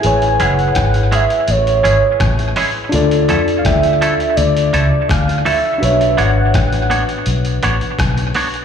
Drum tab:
HH |xxxxxxxxxxx-xxo-|xxxxxxxxxxx-xxo-|xxx-xxxxxxxxxxox|
SD |----r-------r---|----r-------r---|----r-------r---|
BD |----o-------o---|----o-------o---|----o-------o---|